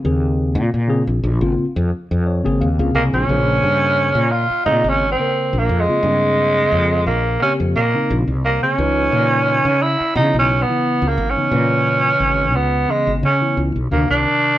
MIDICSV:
0, 0, Header, 1, 5, 480
1, 0, Start_track
1, 0, Tempo, 685714
1, 384, Time_signature, 4, 2, 24, 8
1, 10206, End_track
2, 0, Start_track
2, 0, Title_t, "Tenor saxophone"
2, 0, Program_c, 0, 66
2, 2067, Note_on_c, 0, 58, 78
2, 2124, Note_off_c, 0, 58, 0
2, 2197, Note_on_c, 0, 61, 103
2, 3020, Note_on_c, 0, 65, 87
2, 3031, Note_off_c, 0, 61, 0
2, 3254, Note_off_c, 0, 65, 0
2, 3258, Note_on_c, 0, 63, 95
2, 3423, Note_on_c, 0, 61, 87
2, 3433, Note_off_c, 0, 63, 0
2, 3578, Note_off_c, 0, 61, 0
2, 3582, Note_on_c, 0, 60, 88
2, 3908, Note_on_c, 0, 58, 77
2, 3919, Note_off_c, 0, 60, 0
2, 4061, Note_on_c, 0, 56, 96
2, 4072, Note_off_c, 0, 58, 0
2, 4945, Note_off_c, 0, 56, 0
2, 4948, Note_on_c, 0, 58, 84
2, 5171, Note_off_c, 0, 58, 0
2, 5194, Note_on_c, 0, 61, 95
2, 5265, Note_off_c, 0, 61, 0
2, 5433, Note_on_c, 0, 58, 86
2, 5704, Note_off_c, 0, 58, 0
2, 5914, Note_on_c, 0, 58, 86
2, 6031, Note_off_c, 0, 58, 0
2, 6041, Note_on_c, 0, 61, 95
2, 6875, Note_on_c, 0, 64, 92
2, 6886, Note_off_c, 0, 61, 0
2, 7110, Note_off_c, 0, 64, 0
2, 7114, Note_on_c, 0, 63, 95
2, 7260, Note_off_c, 0, 63, 0
2, 7272, Note_on_c, 0, 61, 88
2, 7434, Note_on_c, 0, 59, 77
2, 7445, Note_off_c, 0, 61, 0
2, 7756, Note_on_c, 0, 58, 76
2, 7766, Note_off_c, 0, 59, 0
2, 7914, Note_on_c, 0, 61, 91
2, 7924, Note_off_c, 0, 58, 0
2, 8788, Note_on_c, 0, 59, 79
2, 8799, Note_off_c, 0, 61, 0
2, 9035, Note_on_c, 0, 56, 86
2, 9045, Note_off_c, 0, 59, 0
2, 9191, Note_off_c, 0, 56, 0
2, 9275, Note_on_c, 0, 61, 79
2, 9544, Note_off_c, 0, 61, 0
2, 9745, Note_on_c, 0, 58, 73
2, 9865, Note_off_c, 0, 58, 0
2, 9871, Note_on_c, 0, 62, 93
2, 10206, Note_off_c, 0, 62, 0
2, 10206, End_track
3, 0, Start_track
3, 0, Title_t, "Tine electric piano"
3, 0, Program_c, 1, 4
3, 27, Note_on_c, 1, 49, 80
3, 32, Note_on_c, 1, 58, 75
3, 34, Note_on_c, 1, 60, 72
3, 40, Note_on_c, 1, 68, 93
3, 429, Note_off_c, 1, 49, 0
3, 431, Note_off_c, 1, 58, 0
3, 432, Note_off_c, 1, 60, 0
3, 435, Note_off_c, 1, 68, 0
3, 614, Note_on_c, 1, 49, 108
3, 618, Note_on_c, 1, 58, 96
3, 624, Note_on_c, 1, 60, 94
3, 628, Note_on_c, 1, 68, 121
3, 705, Note_off_c, 1, 49, 0
3, 707, Note_off_c, 1, 58, 0
3, 710, Note_off_c, 1, 60, 0
3, 712, Note_off_c, 1, 68, 0
3, 747, Note_on_c, 1, 60, 32
3, 761, Note_on_c, 1, 68, 34
3, 803, Note_off_c, 1, 60, 0
3, 810, Note_off_c, 1, 68, 0
3, 983, Note_on_c, 1, 49, 82
3, 988, Note_on_c, 1, 58, 76
3, 991, Note_on_c, 1, 60, 80
3, 994, Note_on_c, 1, 65, 100
3, 1144, Note_off_c, 1, 49, 0
3, 1146, Note_off_c, 1, 58, 0
3, 1148, Note_off_c, 1, 60, 0
3, 1150, Note_off_c, 1, 65, 0
3, 1229, Note_on_c, 1, 60, 33
3, 1240, Note_on_c, 1, 68, 35
3, 1284, Note_off_c, 1, 60, 0
3, 1290, Note_off_c, 1, 68, 0
3, 1586, Note_on_c, 1, 73, 70
3, 1707, Note_on_c, 1, 49, 103
3, 1711, Note_on_c, 1, 58, 91
3, 1714, Note_on_c, 1, 60, 99
3, 1718, Note_on_c, 1, 68, 120
3, 1808, Note_off_c, 1, 73, 0
3, 1826, Note_on_c, 1, 77, 63
3, 1866, Note_off_c, 1, 49, 0
3, 1868, Note_off_c, 1, 58, 0
3, 1870, Note_off_c, 1, 60, 0
3, 1871, Note_off_c, 1, 68, 0
3, 1944, Note_off_c, 1, 77, 0
3, 1948, Note_on_c, 1, 49, 78
3, 1955, Note_on_c, 1, 58, 74
3, 1955, Note_on_c, 1, 77, 60
3, 1957, Note_on_c, 1, 60, 75
3, 1960, Note_on_c, 1, 68, 84
3, 2058, Note_off_c, 1, 77, 0
3, 2064, Note_on_c, 1, 80, 63
3, 2287, Note_off_c, 1, 80, 0
3, 2294, Note_off_c, 1, 49, 0
3, 2300, Note_off_c, 1, 58, 0
3, 2302, Note_on_c, 1, 49, 84
3, 2306, Note_off_c, 1, 60, 0
3, 2308, Note_off_c, 1, 68, 0
3, 2308, Note_on_c, 1, 58, 77
3, 2313, Note_on_c, 1, 72, 75
3, 2317, Note_on_c, 1, 68, 87
3, 2956, Note_off_c, 1, 49, 0
3, 2959, Note_off_c, 1, 58, 0
3, 2961, Note_off_c, 1, 72, 0
3, 2963, Note_off_c, 1, 68, 0
3, 3261, Note_on_c, 1, 49, 64
3, 3266, Note_on_c, 1, 58, 58
3, 3269, Note_on_c, 1, 60, 59
3, 3270, Note_on_c, 1, 68, 72
3, 3506, Note_off_c, 1, 49, 0
3, 3509, Note_off_c, 1, 58, 0
3, 3510, Note_off_c, 1, 60, 0
3, 3511, Note_off_c, 1, 68, 0
3, 3629, Note_on_c, 1, 49, 60
3, 3634, Note_on_c, 1, 58, 61
3, 3638, Note_on_c, 1, 60, 55
3, 3643, Note_on_c, 1, 70, 64
3, 3874, Note_off_c, 1, 49, 0
3, 3877, Note_off_c, 1, 58, 0
3, 3878, Note_off_c, 1, 60, 0
3, 3881, Note_off_c, 1, 70, 0
3, 3985, Note_on_c, 1, 60, 23
3, 4000, Note_on_c, 1, 65, 26
3, 4047, Note_off_c, 1, 60, 0
3, 4055, Note_off_c, 1, 65, 0
3, 4117, Note_on_c, 1, 49, 64
3, 4120, Note_on_c, 1, 58, 62
3, 4124, Note_on_c, 1, 60, 60
3, 4127, Note_on_c, 1, 65, 78
3, 4191, Note_off_c, 1, 49, 0
3, 4192, Note_off_c, 1, 58, 0
3, 4195, Note_off_c, 1, 60, 0
3, 4196, Note_off_c, 1, 65, 0
3, 4228, Note_on_c, 1, 49, 89
3, 4232, Note_on_c, 1, 58, 77
3, 4237, Note_on_c, 1, 60, 74
3, 4240, Note_on_c, 1, 68, 97
3, 4880, Note_off_c, 1, 49, 0
3, 4882, Note_off_c, 1, 58, 0
3, 4884, Note_off_c, 1, 60, 0
3, 4886, Note_off_c, 1, 68, 0
3, 5185, Note_on_c, 1, 49, 67
3, 5191, Note_on_c, 1, 58, 62
3, 5196, Note_on_c, 1, 60, 61
3, 5201, Note_on_c, 1, 67, 77
3, 5429, Note_off_c, 1, 49, 0
3, 5432, Note_off_c, 1, 58, 0
3, 5435, Note_off_c, 1, 60, 0
3, 5437, Note_off_c, 1, 67, 0
3, 5558, Note_on_c, 1, 49, 66
3, 5560, Note_on_c, 1, 58, 56
3, 5562, Note_on_c, 1, 60, 57
3, 5569, Note_on_c, 1, 63, 68
3, 5800, Note_off_c, 1, 49, 0
3, 5800, Note_off_c, 1, 58, 0
3, 5802, Note_off_c, 1, 60, 0
3, 5805, Note_off_c, 1, 63, 0
3, 5907, Note_on_c, 1, 60, 24
3, 5921, Note_on_c, 1, 67, 27
3, 5969, Note_off_c, 1, 60, 0
3, 5976, Note_off_c, 1, 67, 0
3, 6038, Note_on_c, 1, 49, 68
3, 6042, Note_on_c, 1, 58, 62
3, 6045, Note_on_c, 1, 60, 61
3, 6048, Note_on_c, 1, 68, 70
3, 6113, Note_off_c, 1, 49, 0
3, 6115, Note_off_c, 1, 58, 0
3, 6116, Note_off_c, 1, 60, 0
3, 6118, Note_off_c, 1, 68, 0
3, 6148, Note_on_c, 1, 49, 84
3, 6153, Note_on_c, 1, 52, 79
3, 6156, Note_on_c, 1, 71, 77
3, 6160, Note_on_c, 1, 63, 93
3, 6801, Note_off_c, 1, 49, 0
3, 6803, Note_off_c, 1, 52, 0
3, 6805, Note_off_c, 1, 71, 0
3, 6806, Note_off_c, 1, 63, 0
3, 7106, Note_on_c, 1, 49, 69
3, 7111, Note_on_c, 1, 52, 61
3, 7115, Note_on_c, 1, 59, 64
3, 7122, Note_on_c, 1, 64, 74
3, 7350, Note_off_c, 1, 49, 0
3, 7352, Note_off_c, 1, 52, 0
3, 7355, Note_off_c, 1, 59, 0
3, 7358, Note_off_c, 1, 64, 0
3, 7476, Note_on_c, 1, 49, 62
3, 7481, Note_on_c, 1, 52, 60
3, 7485, Note_on_c, 1, 59, 62
3, 7489, Note_on_c, 1, 64, 68
3, 7719, Note_off_c, 1, 49, 0
3, 7721, Note_off_c, 1, 52, 0
3, 7723, Note_off_c, 1, 59, 0
3, 7725, Note_off_c, 1, 64, 0
3, 7818, Note_on_c, 1, 59, 24
3, 7831, Note_on_c, 1, 61, 28
3, 7885, Note_off_c, 1, 59, 0
3, 7891, Note_off_c, 1, 61, 0
3, 7953, Note_on_c, 1, 49, 66
3, 7957, Note_on_c, 1, 52, 62
3, 7960, Note_on_c, 1, 59, 63
3, 7967, Note_on_c, 1, 63, 77
3, 8030, Note_off_c, 1, 49, 0
3, 8032, Note_off_c, 1, 52, 0
3, 8034, Note_off_c, 1, 59, 0
3, 8037, Note_off_c, 1, 63, 0
3, 8057, Note_on_c, 1, 49, 79
3, 8062, Note_on_c, 1, 52, 75
3, 8066, Note_on_c, 1, 71, 83
3, 8070, Note_on_c, 1, 61, 90
3, 8715, Note_off_c, 1, 49, 0
3, 8717, Note_off_c, 1, 52, 0
3, 8719, Note_off_c, 1, 71, 0
3, 8721, Note_off_c, 1, 61, 0
3, 9014, Note_on_c, 1, 49, 69
3, 9019, Note_on_c, 1, 52, 59
3, 9021, Note_on_c, 1, 59, 59
3, 9026, Note_on_c, 1, 61, 74
3, 9264, Note_off_c, 1, 49, 0
3, 9266, Note_off_c, 1, 52, 0
3, 9267, Note_off_c, 1, 59, 0
3, 9270, Note_off_c, 1, 61, 0
3, 9384, Note_on_c, 1, 49, 64
3, 9391, Note_on_c, 1, 52, 55
3, 9394, Note_on_c, 1, 59, 53
3, 9395, Note_on_c, 1, 64, 70
3, 9632, Note_off_c, 1, 49, 0
3, 9636, Note_off_c, 1, 52, 0
3, 9637, Note_off_c, 1, 59, 0
3, 9638, Note_off_c, 1, 64, 0
3, 9737, Note_on_c, 1, 51, 59
3, 9738, Note_on_c, 1, 48, 66
3, 9744, Note_on_c, 1, 70, 58
3, 9748, Note_on_c, 1, 62, 70
3, 10206, Note_off_c, 1, 48, 0
3, 10206, Note_off_c, 1, 51, 0
3, 10206, Note_off_c, 1, 62, 0
3, 10206, Note_off_c, 1, 70, 0
3, 10206, End_track
4, 0, Start_track
4, 0, Title_t, "Fretless electric bass"
4, 0, Program_c, 2, 35
4, 33, Note_on_c, 2, 39, 79
4, 385, Note_on_c, 2, 46, 89
4, 396, Note_off_c, 2, 39, 0
4, 496, Note_off_c, 2, 46, 0
4, 516, Note_on_c, 2, 46, 76
4, 724, Note_off_c, 2, 46, 0
4, 751, Note_on_c, 2, 34, 78
4, 849, Note_off_c, 2, 34, 0
4, 865, Note_on_c, 2, 34, 82
4, 976, Note_off_c, 2, 34, 0
4, 987, Note_on_c, 2, 32, 90
4, 1087, Note_off_c, 2, 32, 0
4, 1234, Note_on_c, 2, 41, 84
4, 1330, Note_off_c, 2, 41, 0
4, 1477, Note_on_c, 2, 41, 80
4, 1684, Note_off_c, 2, 41, 0
4, 1720, Note_on_c, 2, 32, 78
4, 1814, Note_off_c, 2, 32, 0
4, 1829, Note_on_c, 2, 39, 79
4, 1942, Note_off_c, 2, 39, 0
4, 1954, Note_on_c, 2, 37, 77
4, 2054, Note_off_c, 2, 37, 0
4, 2062, Note_on_c, 2, 36, 75
4, 2178, Note_off_c, 2, 36, 0
4, 2194, Note_on_c, 2, 34, 77
4, 2294, Note_off_c, 2, 34, 0
4, 2304, Note_on_c, 2, 34, 77
4, 2513, Note_off_c, 2, 34, 0
4, 2542, Note_on_c, 2, 43, 81
4, 2864, Note_off_c, 2, 43, 0
4, 2905, Note_on_c, 2, 46, 79
4, 3118, Note_off_c, 2, 46, 0
4, 3261, Note_on_c, 2, 46, 87
4, 3375, Note_off_c, 2, 46, 0
4, 3387, Note_on_c, 2, 32, 80
4, 3599, Note_off_c, 2, 32, 0
4, 3870, Note_on_c, 2, 34, 82
4, 3969, Note_off_c, 2, 34, 0
4, 3984, Note_on_c, 2, 41, 83
4, 4097, Note_off_c, 2, 41, 0
4, 4219, Note_on_c, 2, 43, 87
4, 4641, Note_off_c, 2, 43, 0
4, 4704, Note_on_c, 2, 41, 78
4, 4944, Note_on_c, 2, 34, 73
4, 4954, Note_off_c, 2, 41, 0
4, 5155, Note_off_c, 2, 34, 0
4, 5319, Note_on_c, 2, 41, 74
4, 5415, Note_off_c, 2, 41, 0
4, 5429, Note_on_c, 2, 46, 77
4, 5540, Note_off_c, 2, 46, 0
4, 5672, Note_on_c, 2, 34, 87
4, 5782, Note_off_c, 2, 34, 0
4, 5792, Note_on_c, 2, 36, 74
4, 6003, Note_off_c, 2, 36, 0
4, 6149, Note_on_c, 2, 37, 84
4, 6358, Note_off_c, 2, 37, 0
4, 6386, Note_on_c, 2, 46, 84
4, 6708, Note_off_c, 2, 46, 0
4, 6755, Note_on_c, 2, 49, 81
4, 6965, Note_off_c, 2, 49, 0
4, 7109, Note_on_c, 2, 49, 91
4, 7220, Note_off_c, 2, 49, 0
4, 7236, Note_on_c, 2, 35, 79
4, 7446, Note_off_c, 2, 35, 0
4, 7713, Note_on_c, 2, 37, 80
4, 7812, Note_off_c, 2, 37, 0
4, 7824, Note_on_c, 2, 32, 86
4, 7937, Note_off_c, 2, 32, 0
4, 8060, Note_on_c, 2, 46, 83
4, 8482, Note_off_c, 2, 46, 0
4, 8541, Note_on_c, 2, 32, 74
4, 8782, Note_off_c, 2, 32, 0
4, 8782, Note_on_c, 2, 37, 71
4, 8994, Note_off_c, 2, 37, 0
4, 9149, Note_on_c, 2, 32, 73
4, 9249, Note_off_c, 2, 32, 0
4, 9261, Note_on_c, 2, 49, 74
4, 9376, Note_off_c, 2, 49, 0
4, 9500, Note_on_c, 2, 37, 81
4, 9615, Note_off_c, 2, 37, 0
4, 9630, Note_on_c, 2, 35, 69
4, 9730, Note_off_c, 2, 35, 0
4, 9741, Note_on_c, 2, 38, 75
4, 9859, Note_off_c, 2, 38, 0
4, 9871, Note_on_c, 2, 36, 73
4, 9974, Note_off_c, 2, 36, 0
4, 10206, End_track
5, 0, Start_track
5, 0, Title_t, "Muted fretless electric bass strokes"
5, 1106, Note_on_c, 9, 29, 31
5, 1176, Note_off_c, 9, 29, 0
5, 3148, Note_on_c, 9, 29, 33
5, 3218, Note_off_c, 9, 29, 0
5, 7001, Note_on_c, 9, 29, 32
5, 7071, Note_off_c, 9, 29, 0
5, 10206, End_track
0, 0, End_of_file